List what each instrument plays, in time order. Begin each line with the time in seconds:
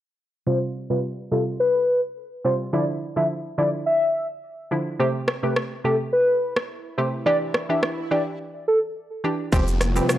0.47 synth pluck C3 G3 F4, soft synth lead C5
0.90 synth pluck C3 G3 F4, soft synth lead B4
1.31 synth pluck C3 G3 F4, soft synth lead A4
1.60 soft synth lead B4
2.45 synth pluck C3 G3 F4, soft synth lead C5
2.73 synth pluck D3 F3 E4, soft synth lead D5
3.16 synth pluck D3 F3 E4, soft synth lead E5
3.58 synth pluck D3 F3 E4, soft synth lead D5
3.86 soft synth lead E5
4.71 synth pluck D3 F3 E4
4.99 synth pluck C3 A3 G4, soft synth lead C5, swell
5.28 cross-stick
5.43 synth pluck C3 A3 G4, soft synth lead B4
5.56 cross-stick
5.84 synth pluck C3 A3 G4, soft synth lead A4
6.13 soft synth lead B4
6.56 cross-stick
6.98 synth pluck C3 A3 G4, soft synth lead C5
7.26 synth pluck E3 D4 G4, soft synth lead D5
7.54 cross-stick
7.69 synth pluck E3 D4 G4, soft synth lead E5
7.83 cross-stick
8.11 synth pluck E3 D4 G4, soft synth lead D5
8.68 soft synth lead A4
9.24 synth pluck E3 D4 G4
9.52 analog synth bass F1, analog synth pad C3 F3 G3 F4, synth pluck F3 C4 G4, soft synth lead C5, kick, downlifter, shaker
9.67 shaker
9.81 cross-stick, closed hi-hat, shaker
9.96 synth pluck F3 C4 G4, soft synth lead B4, shaker
10.09 cross-stick, shaker